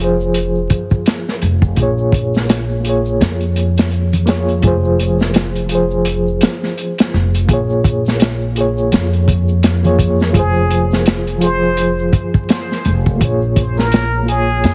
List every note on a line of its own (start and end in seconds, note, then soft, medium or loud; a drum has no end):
0.00 0.68 F1 medium
0.00 1.79 F3 medium
0.00 1.77 F4 medium
0.00 1.79 G#4 medium
0.00 0.04 C5 medium
0.04 1.77 C5 medium
0.20 shaker medium
0.34 closed hi-hat medium
0.34 shaker medium
0.55 shaker soft
0.70 kick medium
0.70 closed hi-hat medium
0.91 kick medium
0.91 shaker medium
1.06 snare medium
1.06 closed hi-hat medium
1.06 shaker medium
1.28 snare soft
1.28 shaker soft
1.42 1.74 F1 loud
1.42 closed hi-hat medium
1.62 kick loud
1.62 shaker medium
1.74 3.17 A#1 medium
1.74 2.79 A#3 medium
1.74 2.81 F4 medium
1.74 kick loud
1.74 closed hi-hat medium
1.74 shaker medium
1.79 2.82 G#4 medium
1.79 2.84 C#5 medium
1.98 shaker soft
2.12 kick medium
2.12 closed hi-hat medium
2.34 snare medium
2.34 shaker medium
2.48 snare loud
2.48 closed hi-hat medium
2.48 shaker medium
2.71 shaker soft
2.80 4.22 A#3 medium
2.80 4.23 F4 medium
2.85 4.25 G#4 medium
2.85 closed hi-hat medium
2.89 4.26 C#5 medium
3.05 shaker medium
3.20 4.61 F2 medium
3.20 snare medium
3.20 closed hi-hat medium
3.20 shaker medium
3.41 closed hi-hat soft
3.41 shaker soft
3.56 closed hi-hat medium
3.77 snare medium
3.77 closed hi-hat medium
3.77 shaker medium
3.91 closed hi-hat soft
3.91 shaker medium
4.13 closed hi-hat medium
4.13 low conga medium
4.13 shaker soft
4.25 4.59 A#3 medium
4.25 4.59 F4 medium
4.25 4.60 G#4 medium
4.25 snare medium
4.25 closed hi-hat medium
4.30 4.61 C#5 loud
4.48 closed hi-hat soft
4.48 shaker medium
4.59 5.65 F3 medium
4.59 5.66 F4 medium
4.59 closed hi-hat medium
4.63 6.39 F1 medium
4.63 5.67 G#4 medium
4.63 kick loud
4.63 shaker medium
4.67 5.69 C5 loud
4.84 shaker soft
4.99 closed hi-hat medium
5.19 snare medium
5.19 shaker medium
5.34 snare loud
5.34 closed hi-hat medium
5.34 shaker medium
5.55 closed hi-hat soft
5.55 shaker soft
5.66 7.43 F3 medium
5.66 7.45 F4 medium
5.66 closed hi-hat medium
5.72 7.46 G#4 medium
5.72 7.48 C5 medium
5.91 shaker medium
6.05 closed hi-hat medium
6.05 shaker medium
6.28 shaker soft
6.41 snare loud
6.41 closed hi-hat medium
6.63 snare soft
6.63 shaker medium
6.78 closed hi-hat medium
6.78 shaker medium
6.98 snare loud
6.98 closed hi-hat medium
6.98 shaker soft
7.14 7.46 F1 loud
7.14 snare soft
7.34 closed hi-hat medium
7.34 shaker medium
7.45 8.50 A#3 medium
7.45 8.52 F4 medium
7.45 kick loud
7.45 shaker medium
7.49 8.89 A#1 medium
7.49 8.53 G#4 medium
7.49 closed hi-hat medium
7.53 8.55 C#5 medium
7.70 shaker soft
7.84 kick medium
7.84 closed hi-hat medium
8.06 snare soft
8.06 shaker medium
8.19 snare loud
8.19 closed hi-hat medium
8.19 shaker medium
8.41 shaker soft
8.52 9.78 A#3 medium
8.52 9.79 F4 medium
8.56 9.81 G#4 medium
8.56 closed hi-hat medium
8.61 9.82 C#5 medium
8.77 shaker medium
8.92 10.32 F2 medium
8.92 snare loud
8.92 closed hi-hat medium
8.92 shaker medium
9.13 closed hi-hat soft
9.13 shaker soft
9.28 kick medium
9.28 closed hi-hat medium
9.48 shaker medium
9.63 snare loud
9.63 closed hi-hat medium
9.63 shaker medium
9.82 10.30 A#3 medium
9.82 10.31 F4 medium
9.82 10.31 G#4 medium
9.82 closed hi-hat soft
9.82 low conga medium
9.82 shaker soft
9.87 10.32 C#5 medium
9.99 kick medium
9.99 closed hi-hat medium
10.20 snare soft
10.20 shaker medium
10.30 11.36 F3 medium
10.30 11.37 F4 medium
10.30 kick medium
10.30 shaker medium
10.35 12.10 F1 medium
10.35 10.86 G#4 medium
10.35 11.39 G#4 medium
10.35 closed hi-hat medium
10.39 11.40 C5 loud
10.56 shaker soft
10.71 closed hi-hat medium
10.91 snare soft
10.91 shaker medium
11.06 snare loud
11.06 closed hi-hat medium
11.06 shaker medium
11.26 closed hi-hat soft
11.26 shaker soft
11.38 13.15 F3 medium
11.38 13.16 F4 medium
11.38 closed hi-hat medium
11.42 13.18 G#4 medium
11.42 11.93 C5 medium
11.46 13.19 C5 medium
11.63 shaker medium
11.77 closed hi-hat medium
11.77 shaker medium
11.98 shaker soft
12.13 kick medium
12.13 closed hi-hat medium
12.34 kick medium
12.34 shaker medium
12.49 snare loud
12.49 closed hi-hat medium
12.49 shaker medium
12.70 snare soft
12.70 shaker soft
12.85 13.17 F1 loud
12.85 closed hi-hat medium
13.06 kick loud
13.06 shaker medium
13.16 14.22 A#3 medium
13.16 14.23 F4 medium
13.21 14.61 A#1 medium
13.21 14.25 G#4 medium
13.21 14.26 C#5 medium
13.21 kick loud
13.21 closed hi-hat medium
13.21 shaker medium
13.42 shaker soft
13.56 kick medium
13.56 closed hi-hat medium
13.77 14.23 A#4 medium
13.77 snare soft
13.77 shaker medium
13.92 snare loud
13.92 closed hi-hat medium
13.92 shaker medium
14.13 shaker soft
14.23 14.74 A#3 medium
14.23 14.74 F4 medium
14.28 14.74 G#4 loud
14.28 14.74 G#4 medium
14.28 14.74 C#5 medium
14.28 closed hi-hat medium
14.48 shaker medium
14.63 14.74 F2 loud
14.63 snare medium
14.63 closed hi-hat medium
14.63 shaker medium